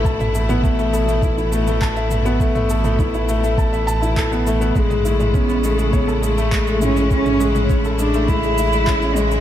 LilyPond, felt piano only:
\new Staff \with { instrumentName = "Felt piano" } { \time 4/4 \key e \mixolydian \tempo 4 = 102 a''16 e''16 a16 b16 a16 a16 a'16 a16 e'16 e'16 a16 a16 a''16 e''16 a16 b16 | a16 a16 a'16 a16 e'16 e'16 a16 a16 a''16 e''16 a''16 e'16 a'16 b16 a16 b16 | gis16 gis16 e'16 gis16 cis'16 cis'16 gis16 gis16 cis''16 a'16 gis16 a16 gis16 gis16 e'16 gis16 | cis'16 cis'16 gis16 gis16 cis''16 a'16 gis16 a16 gis16 gis16 e'16 gis16 cis'16 cis'16 gis16 gis16 | }